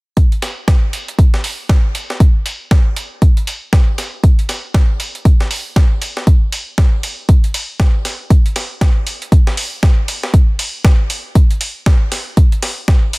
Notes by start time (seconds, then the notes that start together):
0.17 kick, closed hi-hat
0.32 closed hi-hat
0.42 snare, closed hi-hat, open hi-hat
0.68 kick, snare, closed hi-hat
0.93 closed hi-hat, open hi-hat
1.08 closed hi-hat
1.19 kick, closed hi-hat
1.34 snare
1.44 open hi-hat
1.69 kick, snare, closed hi-hat
1.95 closed hi-hat, open hi-hat
2.10 snare
2.20 kick, closed hi-hat
2.46 closed hi-hat, open hi-hat
2.71 kick, snare, closed hi-hat
2.96 closed hi-hat, open hi-hat
3.22 kick, closed hi-hat
3.37 closed hi-hat
3.47 closed hi-hat, open hi-hat
3.73 kick, snare, closed hi-hat
3.98 snare, closed hi-hat, open hi-hat
4.24 kick, closed hi-hat
4.39 closed hi-hat
4.49 snare, closed hi-hat, open hi-hat
4.74 kick, snare, closed hi-hat
5.00 closed hi-hat, open hi-hat
5.15 closed hi-hat
5.25 kick, closed hi-hat
5.40 snare
5.51 open hi-hat
5.76 kick, snare, closed hi-hat
6.02 closed hi-hat, open hi-hat
6.17 snare
6.27 kick, closed hi-hat
6.52 closed hi-hat, open hi-hat
6.78 kick, snare, closed hi-hat
7.03 closed hi-hat, open hi-hat
7.29 kick, closed hi-hat
7.44 closed hi-hat
7.54 closed hi-hat, open hi-hat
7.80 kick, snare, closed hi-hat
8.05 snare, closed hi-hat, open hi-hat
8.30 kick, closed hi-hat
8.46 closed hi-hat
8.56 snare, closed hi-hat, open hi-hat
8.81 kick, snare, closed hi-hat
9.07 closed hi-hat, open hi-hat
9.22 closed hi-hat
9.32 kick, closed hi-hat
9.47 snare
9.57 open hi-hat
9.83 kick, snare, closed hi-hat
10.08 closed hi-hat, open hi-hat
10.23 snare
10.34 kick, closed hi-hat
10.59 closed hi-hat, open hi-hat
10.85 kick, snare, closed hi-hat
11.10 closed hi-hat, open hi-hat
11.35 kick, closed hi-hat
11.51 closed hi-hat
11.61 closed hi-hat, open hi-hat
11.86 kick, snare, closed hi-hat
12.12 snare, closed hi-hat, open hi-hat
12.37 kick, closed hi-hat
12.52 closed hi-hat
12.62 snare, closed hi-hat, open hi-hat
12.88 kick, snare, closed hi-hat
13.13 closed hi-hat, open hi-hat